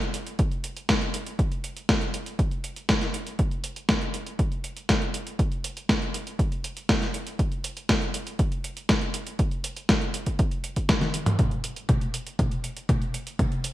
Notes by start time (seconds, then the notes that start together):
0.02 closed hi-hat
0.14 closed hi-hat
0.27 closed hi-hat
0.39 kick, closed hi-hat
0.52 closed hi-hat
0.64 closed hi-hat
0.77 closed hi-hat
0.89 kick, snare, closed hi-hat
1.02 closed hi-hat
1.14 closed hi-hat
1.27 closed hi-hat
1.39 kick, closed hi-hat
1.52 closed hi-hat
1.64 closed hi-hat
1.77 closed hi-hat
1.89 kick, snare, closed hi-hat
2.01 closed hi-hat
2.14 closed hi-hat
2.26 closed hi-hat
2.39 kick, closed hi-hat
2.51 closed hi-hat
2.64 closed hi-hat
2.76 closed hi-hat
2.89 kick, snare, closed hi-hat
3.02 snare, closed hi-hat
3.14 closed hi-hat
3.27 closed hi-hat
3.39 kick, closed hi-hat
3.51 closed hi-hat
3.64 closed hi-hat
3.76 closed hi-hat
3.89 kick, snare, closed hi-hat
4.01 closed hi-hat
4.14 closed hi-hat
4.27 closed hi-hat
4.39 kick, closed hi-hat
4.52 closed hi-hat
4.64 closed hi-hat
4.77 closed hi-hat
4.89 kick, snare, closed hi-hat
5.02 closed hi-hat
5.14 closed hi-hat
5.27 closed hi-hat
5.39 kick, closed hi-hat
5.52 closed hi-hat
5.64 closed hi-hat
5.77 closed hi-hat
5.89 kick, snare, closed hi-hat
6.02 closed hi-hat
6.14 closed hi-hat
6.27 closed hi-hat
6.39 kick, closed hi-hat
6.52 closed hi-hat
6.64 closed hi-hat
6.77 closed hi-hat
6.89 kick, snare, closed hi-hat
7.02 snare, closed hi-hat
7.14 closed hi-hat
7.27 closed hi-hat
7.39 kick, closed hi-hat
7.52 closed hi-hat
7.64 closed hi-hat
7.77 closed hi-hat
7.89 kick, snare, closed hi-hat
8.02 closed hi-hat
8.14 closed hi-hat
8.27 closed hi-hat
8.39 kick, closed hi-hat
8.52 closed hi-hat
8.64 closed hi-hat
8.77 closed hi-hat
8.89 kick, snare, closed hi-hat
9.02 closed hi-hat
9.14 closed hi-hat
9.27 closed hi-hat
9.39 kick, closed hi-hat
9.51 closed hi-hat
9.64 closed hi-hat
9.77 closed hi-hat
9.89 kick, snare, closed hi-hat
10.01 closed hi-hat
10.14 closed hi-hat
10.26 kick, closed hi-hat
10.39 kick, closed hi-hat
10.51 closed hi-hat
10.64 closed hi-hat
10.76 kick, closed hi-hat
10.89 kick, snare, closed hi-hat, high tom
11.01 snare, closed hi-hat, high tom
11.14 closed hi-hat
11.26 closed hi-hat, mid tom
11.39 kick, closed hi-hat, mid tom
11.51 closed hi-hat
11.64 closed hi-hat
11.76 closed hi-hat
11.89 kick, closed hi-hat, mid tom
12.01 closed hi-hat
12.14 closed hi-hat
12.27 closed hi-hat
12.39 kick, closed hi-hat, mid tom
12.51 closed hi-hat
12.64 closed hi-hat
12.77 closed hi-hat
12.89 kick, closed hi-hat, mid tom
13.02 closed hi-hat
13.14 closed hi-hat
13.27 closed hi-hat
13.39 kick, closed hi-hat, mid tom
13.52 closed hi-hat
13.64 closed hi-hat